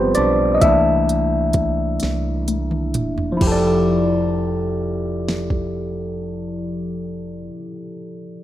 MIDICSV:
0, 0, Header, 1, 4, 480
1, 0, Start_track
1, 0, Key_signature, -1, "major"
1, 0, Tempo, 930233
1, 319, Time_signature, 6, 3, 24, 8
1, 4353, End_track
2, 0, Start_track
2, 0, Title_t, "Tine electric piano"
2, 0, Program_c, 0, 4
2, 0, Control_c, 0, 64, 127
2, 0, Note_on_c, 0, 55, 61
2, 0, Note_on_c, 0, 56, 47
2, 0, Note_on_c, 0, 59, 65
2, 0, Note_on_c, 0, 60, 64
2, 0, Note_on_c, 0, 67, 80
2, 0, Note_on_c, 0, 71, 77
2, 0, Note_on_c, 0, 72, 85
2, 67, Note_off_c, 0, 60, 0
2, 76, Note_on_c, 0, 74, 80
2, 84, Note_off_c, 0, 72, 0
2, 89, Note_on_c, 0, 62, 66
2, 267, Note_off_c, 0, 74, 0
2, 274, Note_off_c, 0, 62, 0
2, 281, Note_on_c, 0, 75, 61
2, 301, Note_off_c, 0, 56, 0
2, 317, Note_on_c, 0, 76, 81
2, 318, Note_off_c, 0, 75, 0
2, 324, Note_on_c, 0, 52, 48
2, 326, Control_c, 0, 64, 0
2, 327, Note_off_c, 0, 55, 0
2, 327, Note_on_c, 0, 57, 43
2, 328, Note_off_c, 0, 59, 0
2, 328, Note_off_c, 0, 67, 0
2, 328, Note_on_c, 0, 58, 43
2, 330, Note_off_c, 0, 71, 0
2, 330, Note_on_c, 0, 62, 56
2, 331, Note_on_c, 0, 64, 64
2, 421, Control_c, 0, 64, 127
2, 1017, Note_off_c, 0, 76, 0
2, 1024, Note_off_c, 0, 64, 0
2, 1714, Note_on_c, 0, 53, 64
2, 1739, Note_on_c, 0, 64, 60
2, 1741, Note_off_c, 0, 52, 0
2, 1742, Note_off_c, 0, 57, 0
2, 1743, Note_off_c, 0, 58, 0
2, 1744, Note_off_c, 0, 62, 0
2, 1765, Note_on_c, 0, 67, 60
2, 1766, Control_c, 0, 64, 0
2, 1791, Note_on_c, 0, 69, 57
2, 1815, Note_on_c, 0, 74, 71
2, 1863, Control_c, 0, 64, 127
2, 3812, Note_off_c, 0, 53, 0
2, 3838, Note_off_c, 0, 64, 0
2, 3864, Note_off_c, 0, 67, 0
2, 3890, Note_off_c, 0, 69, 0
2, 3914, Note_off_c, 0, 74, 0
2, 4353, End_track
3, 0, Start_track
3, 0, Title_t, "Fingered electric bass"
3, 0, Program_c, 1, 33
3, 0, Note_on_c, 1, 31, 72
3, 64, Note_off_c, 1, 31, 0
3, 90, Note_on_c, 1, 35, 78
3, 304, Note_off_c, 1, 35, 0
3, 324, Note_on_c, 1, 36, 81
3, 1021, Note_off_c, 1, 36, 0
3, 1049, Note_on_c, 1, 36, 64
3, 1528, Note_off_c, 1, 36, 0
3, 1528, Note_on_c, 1, 28, 76
3, 1743, Note_off_c, 1, 28, 0
3, 1765, Note_on_c, 1, 29, 65
3, 3864, Note_off_c, 1, 29, 0
3, 4353, End_track
4, 0, Start_track
4, 0, Title_t, "Drums"
4, 75, Note_on_c, 9, 42, 40
4, 127, Note_off_c, 9, 42, 0
4, 317, Note_on_c, 9, 42, 61
4, 318, Note_on_c, 9, 36, 97
4, 369, Note_off_c, 9, 36, 0
4, 369, Note_off_c, 9, 42, 0
4, 563, Note_on_c, 9, 42, 38
4, 615, Note_off_c, 9, 42, 0
4, 791, Note_on_c, 9, 42, 42
4, 796, Note_on_c, 9, 36, 71
4, 842, Note_off_c, 9, 42, 0
4, 847, Note_off_c, 9, 36, 0
4, 1030, Note_on_c, 9, 42, 52
4, 1046, Note_on_c, 9, 38, 44
4, 1082, Note_off_c, 9, 42, 0
4, 1098, Note_off_c, 9, 38, 0
4, 1278, Note_on_c, 9, 42, 45
4, 1280, Note_on_c, 9, 48, 55
4, 1330, Note_off_c, 9, 42, 0
4, 1332, Note_off_c, 9, 48, 0
4, 1398, Note_on_c, 9, 47, 55
4, 1450, Note_off_c, 9, 47, 0
4, 1518, Note_on_c, 9, 42, 40
4, 1520, Note_on_c, 9, 45, 75
4, 1569, Note_off_c, 9, 42, 0
4, 1572, Note_off_c, 9, 45, 0
4, 1639, Note_on_c, 9, 43, 70
4, 1691, Note_off_c, 9, 43, 0
4, 1759, Note_on_c, 9, 36, 79
4, 1760, Note_on_c, 9, 49, 67
4, 1811, Note_off_c, 9, 36, 0
4, 1812, Note_off_c, 9, 49, 0
4, 2727, Note_on_c, 9, 38, 46
4, 2778, Note_off_c, 9, 38, 0
4, 2839, Note_on_c, 9, 36, 57
4, 2891, Note_off_c, 9, 36, 0
4, 4353, End_track
0, 0, End_of_file